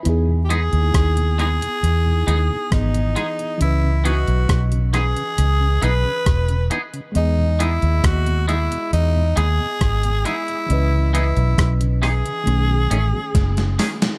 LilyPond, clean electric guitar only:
\new Staff \with { instrumentName = "Clean electric guitar" } { \time 4/4 \key e \major \tempo 4 = 68 r8 <gis b dis' gis'>8 r8 <gis b dis' gis'>8 r8 <gis b dis' gis'>8 r8 <gis b dis' gis'>8 | r8 <e b dis' gis'>8 r8 <e b dis' gis'>8 r8 <e b dis' gis'>8 r8 <e b dis' gis'>8 | r8 <gis b dis' gis'>8 r8 <gis b dis' gis'>8 r8 <gis b dis' gis'>8 r8 <gis b dis' gis'>8 | r8 <e b dis' gis'>8 r8 <e b dis' gis'>8 r8 <dis a cis' gis'>8 r8 <dis a cis' gis'>8 | }